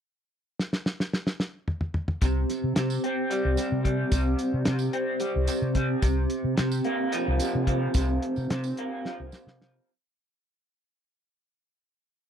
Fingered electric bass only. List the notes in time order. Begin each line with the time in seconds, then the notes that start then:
2.22 C2
2.64 C3
2.76 C3
3.45 C2
3.72 C3
4.12 C2
4.54 C3
4.67 C3
5.36 C2
5.62 C3
6.03 C2
6.44 C3
6.59 C3
7.28 C2
7.55 C3
7.95 C2
8.37 C3
8.50 C3
9.20 C2
9.47 C3